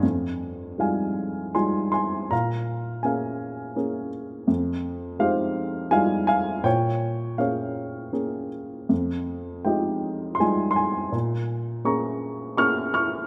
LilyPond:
\new Staff \with { instrumentName = "Grand piano" } { \time 3/4 \key f \minor \tempo 4 = 82 << { r4 <f'' aes''>4 <aes'' c'''>8 <aes'' c'''>8 | <f'' bes''>4 <f'' aes''>4. r8 | r4 <c'' f''>4 <f'' aes''>8 <f'' aes''>8 | <des'' g''>4 <des'' f''>4. r8 |
r4 <ees'' g''>4 <aes'' c'''>8 <aes'' c'''>8 | r4 <bes'' des'''>4 <des''' f'''>8 <des''' f'''>8 | } \\ { f,4 <g aes ees' f'>4 <g aes ees' f'>4 | bes,4 <bes des' aes'>4 <bes des' aes'>4 | f,4 <aes ees' f' g'>4 <g aes ees' f'>4 | bes,4 <bes des' aes'>4 <bes des' aes'>4 |
f,4 <aes ees' f' g'>4 <g aes ees' f'>4 | bes,4 <bes des' aes'>4 <bes des' aes'>4 | } >> }